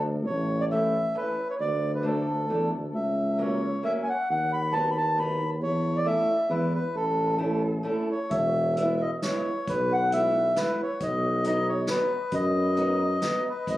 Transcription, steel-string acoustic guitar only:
0.71 E3 A3 C#4
1.14 E3 A3 C#4
2.02 F#3 A3 D4
2.49 F#3 A3 D4
3.38 F#3 A#3 C#4
3.83 F#3 A#3 C#4
4.72 F#3 B3 D#4
5.16 F#3 B3 D#4
6.05 A3 C#4 E4
6.50 G#3 B3 E4
7.38 A3 C#4 E4
7.83 A3 C#4 E4
8.77 G#3 B3 E4
9.23 G#3 B3 E4
10.11 G#3 B3 E4
10.56 G#3 B3 E4
11.45 F#3 B3 D#4
11.87 F#3 B3 D#4
12.76 F#3 B3 D#4
13.21 F#3 B3 D#4

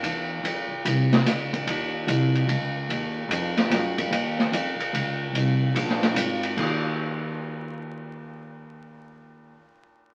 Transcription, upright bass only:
0.03 E2
0.43 F2
0.71 muted upright bass stroke
0.85 C2
1.25 C#2
1.67 D#2
2.07 C2
2.48 C#2
2.89 D#2
3.29 F2
3.70 F#2
4.11 D#2
4.52 F2
4.79 muted upright bass stroke
4.93 C#2
5.33 C2
5.74 A#1
6.14 G#1
6.57 D#2

